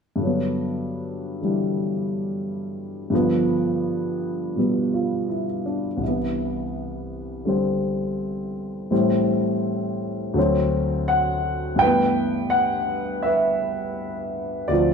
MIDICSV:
0, 0, Header, 1, 2, 480
1, 0, Start_track
1, 0, Key_signature, 1, "major"
1, 0, Tempo, 724638
1, 139, Time_signature, 4, 2, 24, 8
1, 9894, End_track
2, 0, Start_track
2, 0, Title_t, "Grand piano"
2, 0, Program_c, 0, 0
2, 103, Note_on_c, 0, 43, 50
2, 125, Note_on_c, 0, 50, 40
2, 151, Note_on_c, 0, 54, 47
2, 175, Note_on_c, 0, 59, 50
2, 252, Control_c, 0, 64, 127
2, 925, Note_off_c, 0, 50, 0
2, 935, Note_on_c, 0, 50, 38
2, 947, Note_on_c, 0, 52, 37
2, 957, Note_on_c, 0, 55, 44
2, 2044, Note_off_c, 0, 43, 0
2, 2054, Note_off_c, 0, 50, 0
2, 2054, Note_on_c, 0, 43, 53
2, 2064, Note_on_c, 0, 50, 48
2, 2067, Note_off_c, 0, 52, 0
2, 2069, Note_off_c, 0, 54, 0
2, 2071, Note_off_c, 0, 55, 0
2, 2071, Control_c, 0, 64, 0
2, 2076, Note_off_c, 0, 59, 0
2, 2076, Note_on_c, 0, 53, 48
2, 2086, Note_on_c, 0, 59, 60
2, 2168, Control_c, 0, 64, 127
2, 3021, Note_on_c, 0, 47, 39
2, 3032, Note_off_c, 0, 59, 0
2, 3034, Note_on_c, 0, 55, 36
2, 3042, Note_on_c, 0, 59, 43
2, 3272, Note_on_c, 0, 65, 42
2, 3504, Note_on_c, 0, 64, 45
2, 3604, Note_off_c, 0, 65, 0
2, 3747, Note_on_c, 0, 62, 47
2, 3878, Note_off_c, 0, 64, 0
2, 3953, Note_on_c, 0, 36, 43
2, 3975, Note_on_c, 0, 48, 42
2, 3982, Note_off_c, 0, 43, 0
2, 3984, Note_off_c, 0, 47, 0
2, 3986, Note_off_c, 0, 50, 0
2, 3991, Note_off_c, 0, 55, 0
2, 3992, Note_off_c, 0, 53, 0
2, 3994, Note_off_c, 0, 59, 0
2, 3995, Control_c, 0, 64, 0
2, 4000, Note_on_c, 0, 52, 42
2, 4027, Note_on_c, 0, 59, 44
2, 4082, Note_off_c, 0, 62, 0
2, 4121, Control_c, 0, 64, 127
2, 4935, Note_on_c, 0, 50, 44
2, 4947, Note_on_c, 0, 55, 39
2, 4957, Note_on_c, 0, 60, 44
2, 5891, Note_off_c, 0, 36, 0
2, 5891, Note_off_c, 0, 52, 0
2, 5896, Note_off_c, 0, 55, 0
2, 5898, Note_off_c, 0, 60, 0
2, 5900, Note_on_c, 0, 45, 49
2, 5901, Note_off_c, 0, 50, 0
2, 5901, Note_on_c, 0, 52, 43
2, 5902, Note_off_c, 0, 48, 0
2, 5906, Note_on_c, 0, 55, 45
2, 5908, Note_on_c, 0, 60, 53
2, 5917, Control_c, 0, 64, 0
2, 5927, Note_off_c, 0, 59, 0
2, 6016, Control_c, 0, 64, 127
2, 6847, Note_on_c, 0, 38, 57
2, 6858, Note_on_c, 0, 50, 53
2, 6863, Note_off_c, 0, 45, 0
2, 6863, Note_off_c, 0, 52, 0
2, 6866, Note_off_c, 0, 55, 0
2, 6867, Note_off_c, 0, 60, 0
2, 6870, Note_on_c, 0, 54, 57
2, 6875, Control_c, 0, 64, 0
2, 6880, Note_on_c, 0, 60, 63
2, 6975, Control_c, 0, 64, 127
2, 7340, Note_on_c, 0, 78, 80
2, 7790, Note_on_c, 0, 43, 53
2, 7795, Note_off_c, 0, 78, 0
2, 7809, Note_on_c, 0, 79, 92
2, 7810, Note_on_c, 0, 52, 49
2, 7815, Note_off_c, 0, 38, 0
2, 7821, Note_off_c, 0, 50, 0
2, 7827, Note_off_c, 0, 54, 0
2, 7831, Note_off_c, 0, 60, 0
2, 7831, Note_on_c, 0, 71, 73
2, 7832, Control_c, 0, 64, 0
2, 7836, Note_on_c, 0, 57, 48
2, 7862, Note_on_c, 0, 59, 63
2, 7941, Control_c, 0, 64, 127
2, 8280, Note_on_c, 0, 78, 89
2, 8310, Note_off_c, 0, 79, 0
2, 8759, Note_off_c, 0, 71, 0
2, 8760, Note_on_c, 0, 76, 81
2, 8783, Note_on_c, 0, 71, 66
2, 8785, Note_off_c, 0, 78, 0
2, 9701, Note_off_c, 0, 76, 0
2, 9712, Note_off_c, 0, 71, 0
2, 9721, Note_off_c, 0, 43, 0
2, 9723, Note_on_c, 0, 74, 73
2, 9727, Note_on_c, 0, 38, 49
2, 9731, Note_off_c, 0, 52, 0
2, 9739, Note_on_c, 0, 50, 41
2, 9744, Note_off_c, 0, 57, 0
2, 9748, Control_c, 0, 64, 0
2, 9748, Note_on_c, 0, 65, 50
2, 9750, Note_on_c, 0, 53, 39
2, 9757, Note_off_c, 0, 59, 0
2, 9761, Note_on_c, 0, 60, 49
2, 9869, Control_c, 0, 64, 127
2, 9894, Note_off_c, 0, 38, 0
2, 9894, Note_off_c, 0, 50, 0
2, 9894, Note_off_c, 0, 53, 0
2, 9894, Note_off_c, 0, 60, 0
2, 9894, Note_off_c, 0, 65, 0
2, 9894, Note_off_c, 0, 74, 0
2, 9894, End_track
0, 0, End_of_file